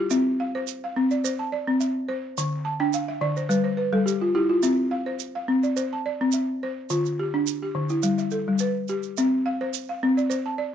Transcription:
0.00 balafon G4
0.10 balafon C4 E5, shaker
0.40 balafon F5
0.55 balafon C5
0.67 shaker
0.84 balafon F5
0.96 balafon C4
1.11 balafon D5, shaker
1.24 balafon C5, shaker
1.39 balafon A5
1.52 balafon D5
1.67 balafon C4
1.80 balafon E5, shaker
2.08 balafon C5
2.38 balafon D3, shaker
2.65 balafon A5
2.80 balafon D4 G5
2.93 balafon F5, shaker
3.08 balafon E5
3.21 balafon D3 D5
3.37 balafon C5, shaker
3.49 balafon G3 B4, shaker
3.64 balafon C5
3.77 balafon B4
3.93 balafon G3 A4
4.06 balafon G4, shaker
4.21 balafon F4
4.35 balafon E4 G4
4.49 balafon F4
4.63 balafon C4 E5, shaker
4.91 balafon F5
5.06 balafon C5
5.19 shaker
5.35 balafon F5
5.48 balafon C4
5.63 balafon D5, shaker
5.76 balafon C5, shaker
5.93 balafon A5
6.06 balafon D5
6.21 balafon C4
6.32 balafon E5, shaker
6.63 balafon C5
6.90 balafon D3 F4, shaker
7.06 shaker
7.19 balafon G4
7.34 balafon D4
7.47 shaker
7.62 balafon G4
7.75 balafon D3
7.89 balafon E4, shaker
8.03 balafon G3, shaker
8.18 balafon E5, shaker
8.31 balafon A4, shaker
8.48 balafon G3
8.59 balafon B4, shaker
8.88 balafon G4, shaker
9.03 shaker
9.17 balafon C4 E5, shaker
9.46 balafon F5
9.61 balafon C5
9.74 shaker
9.89 balafon F5
10.03 balafon C4
10.17 balafon D5, shaker
10.30 balafon C5, shaker
10.46 balafon A5
10.58 balafon D5

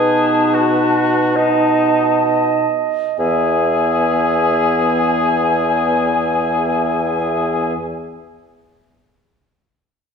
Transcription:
Already playing: bassoon B2, french horn D#4, oboe G#4, clarinet B4, flute A5
0.54 oboe F#4
1.34 french horn D#4, oboe D#4, clarinet D#5, flute A5
3.18 bassoon E2, french horn B3, oboe G#4, clarinet E5, flute G#5

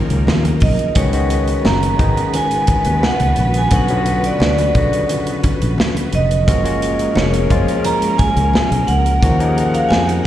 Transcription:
Already playing: string section C#3 D#3 A#3 D#4 A#4, tine electric piano D#3 F3 F#3 A#3 C#4 F4
0.10 fingered electric bass C#2, closed hi-hat
0.27 fingered electric bass D#2, snare, high conga
0.45 closed hi-hat, high conga
0.60 fingered electric bass B1, vibraphone D#5, kick, open hi-hat
0.79 closed hi-hat
0.95 fingered electric bass C#2, string section C#3 G#3 B3 F#4 B4, tine electric piano D#3 G#3 B3 C#4 F#4, vibraphone C#5, kick, closed hi-hat, muted conga
1.13 tine electric piano D#3 G#3 B3 C#4 F#4, closed hi-hat
1.30 closed hi-hat
1.48 closed hi-hat
1.65 fingered electric bass F#1, vibraphone A#5, snare, high conga
1.83 closed hi-hat
1.99 fingered electric bass G#1, tine electric piano D#3 G#3 B3 C#4 D#4, kick, closed hi-hat
2.17 closed hi-hat
2.34 vibraphone G#5, closed hi-hat, muted conga
2.51 closed hi-hat
2.67 muted fingered electric bass stroke, kick, closed hi-hat, muted conga
2.85 fingered electric bass D#2, closed hi-hat
3.03 vibraphone F#5, snare, high conga
3.20 fingered electric bass C#2, closed hi-hat, high conga
3.36 fingered electric bass A#1, closed hi-hat
3.54 vibraphone G#5, closed hi-hat
3.71 fingered electric bass B1, string section B2, tine electric piano D3 F#3 B3 C#4 F#4, kick, closed hi-hat
3.75 vibraphone F#5
3.88 tine electric piano D3 F#3 B3 C#4 F4, closed hi-hat
3.98 tine electric piano F#4
4.06 closed hi-hat
4.24 vibraphone D5, closed hi-hat
4.40 fingered electric bass D2, snare, high conga
4.45 vibraphone D5
4.58 closed hi-hat
4.75 fingered electric bass B1, tine electric piano C#3 D3 F#3 B3 F#4, kick, closed hi-hat
4.93 closed hi-hat
5.09 closed hi-hat, muted conga
5.27 closed hi-hat
5.44 muted fingered electric bass stroke, kick, closed hi-hat, muted conga, low conga
5.62 fingered electric bass A#1, closed hi-hat
5.78 snare, high conga
5.95 closed hi-hat, high conga
6.12 fingered electric bass F1, vibraphone D#5, closed hi-hat
6.31 closed hi-hat
6.47 fingered electric bass F#1, tine electric piano F3 G#3 A#3 C#4 F#4, string section G#3 C#4 G#4 A#4, kick, closed hi-hat
6.63 tine electric piano G#3 A#3 C#4 F4 F#4, closed hi-hat
6.82 closed hi-hat
6.99 closed hi-hat
7.15 fingered electric bass F1, vibraphone C#5, snare, high conga
7.34 closed hi-hat
7.49 fingered electric bass F#1, tine electric piano F3 G#3 A#3 C#4 F4, kick, closed hi-hat
7.68 closed hi-hat
7.85 vibraphone A#5, closed hi-hat, muted conga
8.02 closed hi-hat
8.18 vibraphone G#5, muted fingered electric bass stroke, kick, closed hi-hat, muted conga
8.37 fingered electric bass C#2, closed hi-hat
8.54 snare, high conga
8.71 fingered electric bass B1, closed hi-hat, high conga
8.87 fingered electric bass C#2, vibraphone F#5, closed hi-hat
9.06 closed hi-hat
9.21 fingered electric bass D#2, string section D#3 D#4 F#5, tine electric piano F3 A#3 C#4 D#4 F#4, kick, closed hi-hat, muted conga
9.39 tine electric piano F3 A#3 C#4 D#4 G4, closed hi-hat
9.47 tine electric piano G#4
9.58 closed hi-hat
9.74 vibraphone F5, closed hi-hat
9.89 fingered electric bass F2, vibraphone G#5, snare, high conga
10.09 closed hi-hat
10.24 vibraphone F#5

